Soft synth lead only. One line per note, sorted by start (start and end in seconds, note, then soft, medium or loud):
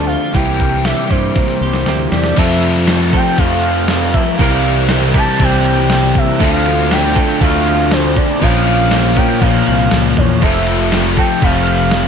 0.06 0.36 F5 loud
0.35 0.86 G5 loud
0.85 1.09 E5 loud
1.09 2.07 C5 medium
2.11 2.39 D5 medium
2.37 2.88 E5 loud
3.16 3.40 G5 loud
3.38 4.15 F5 loud
4.13 4.37 E5 medium
4.36 4.88 F5 loud
5.18 5.45 A5 loud
5.44 6.19 G5 loud
6.18 6.44 E5 loud
6.42 6.94 F5 loud
6.92 7.40 G5 loud
7.41 7.94 F5 loud
7.92 8.18 C5 loud
8.17 8.44 D5 loud
8.42 9.19 F5 loud
9.17 9.42 G5 loud
9.41 10.19 F5 loud
10.18 10.42 C#5 medium
10.43 10.89 E5 loud
11.18 11.45 G5 loud
11.44 12.08 F5 loud